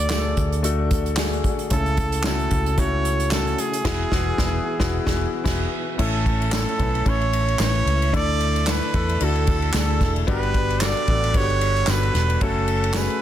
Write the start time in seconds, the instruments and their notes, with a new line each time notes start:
Already playing: fingered electric bass D2, grand piano D3 A3 D4 F#4 A4, tonewheel organ D3 A3 D4 F#4, trumpet D5
0.10 grand piano A3 D4 F#4 G#4, snare, clap, tambourine
0.18 grand piano A4
0.37 fingered electric bass D2, kick, closed hi-hat
0.52 closed hi-hat
0.63 grand piano A3 D4 F#4 A4, closed hi-hat
0.91 kick, closed hi-hat
1.06 closed hi-hat
1.16 grand piano A3 D4 F#4 G#4, snare, clap, tambourine
1.33 closed hi-hat
1.44 kick, closed hi-hat
1.59 closed hi-hat
1.70 fingered electric bass C#2, grand piano C#3 A3 C#4 E4 A4, tonewheel organ C#3 C#4 E4, trumpet A4, kick, closed hi-hat
1.86 closed hi-hat
1.97 kick, closed hi-hat
2.12 closed hi-hat
2.23 grand piano A3 C#4 E4 F#4, trumpet A4, snare, clap, tambourine
2.40 closed hi-hat
2.51 fingered electric bass C#2, kick, closed hi-hat
2.66 closed hi-hat
2.77 grand piano A3 C#4 E4 F#4, trumpet C#5, kick, closed hi-hat
3.05 closed hi-hat
3.20 closed hi-hat
3.31 grand piano A3 C#4 E4 F#4, trumpet A4, snare, clap, tambourine
3.47 closed hi-hat
3.58 trumpet G#4, closed hi-hat
3.73 closed hi-hat
3.84 fingered electric bass E1, tonewheel organ E3 B3 F#4 G#4, grand piano E3 B3 E4 F#4 G#4, kick, snare, crash
4.11 fingered electric bass E1, grand piano E3 B3 E4 F#4 G#4, kick, snare
4.38 fingered electric bass E1, grand piano B3 E4 F#4 B4, kick, snare
4.80 fingered electric bass E1, grand piano B3 E4 F#4 G#4, kick, snare
5.06 fingered electric bass E1, grand piano B3 E4 F#4 G#4, kick, snare
5.44 fingered electric bass E1, grand piano B3 E4 F#4 G#4, kick, snare, crash
5.98 fingered electric bass A1, grand piano A2 A3 C#4 E4 A4, tonewheel organ A3 C#4 E4, trumpet A4, kick, crash
6.26 kick, ride
6.42 ride
6.51 grand piano A3 C#4 E4 A4, trumpet A4, snare, clap, ride, tambourine
6.69 ride
6.78 fingered electric bass B1, grand piano A3 C#4 E4 B4, kick, ride
6.95 ride
7.05 fingered electric bass A1, grand piano A3 C#4 E4 A4, trumpet C#5, kick, ride
7.21 ride
7.33 ride
7.48 ride
7.59 fingered electric bass A1, grand piano A3 C#4 E4 B4, trumpet C#5, snare, clap, ride, tambourine
7.75 ride
7.86 fingered electric bass C#2, ride
8.02 ride
8.12 fingered electric bass D2, grand piano D3 A3 D4 E4 A4, tonewheel organ D3 D4 A4, trumpet D5, kick, ride
8.40 ride
8.56 ride
8.66 grand piano A3 D4 E4 A4, trumpet B4, snare, clap, ride, tambourine
8.83 ride
8.93 fingered electric bass E2, grand piano A3 D4 E4 A4, kick, ride
9.09 ride
9.20 fingered electric bass D2, grand piano A3 D4 E4 F#4, trumpet A4, ride
9.35 ride
9.47 kick, ride
9.62 ride
9.73 fingered electric bass D2, grand piano A3 D4 E4 G#4, snare, clap, ride, tambourine
9.79 trumpet A4, grand piano A4
10.00 fingered electric bass E1, kick, snare, ride
10.16 ride
10.27 fingered electric bass G1, grand piano G2 B3 D4 F#4 G4, tonewheel organ G3 B4 F#5, trumpet B4, kick, ride
10.43 ride
10.54 kick, ride
10.70 ride
10.80 grand piano B3 D4 F#4 A4, trumpet D5, snare, clap, ride, tambourine
10.97 ride
11.08 fingered electric bass A1, grand piano B3 D4 F#4 A4, kick, ride
11.24 ride
11.34 fingered electric bass G1, grand piano B3 D4 F#4 G4, trumpet C#5, kick, ride
11.50 ride
11.61 ride
11.76 ride
11.87 fingered electric bass G1, grand piano B3 D4 F#4 A4, trumpet B4, snare, clap, ride, tambourine
12.03 ride
12.15 fingered electric bass E1, snare, ride
12.30 ride
12.41 fingered electric bass F#1, grand piano A3 C#4 F#4 A4, tonewheel organ A3 C#4, trumpet A4, kick, ride
12.68 ride
12.84 ride
12.94 grand piano A3 C#4 F#4 G#4, trumpet B4, snare, clap, ride, tambourine
13.10 ride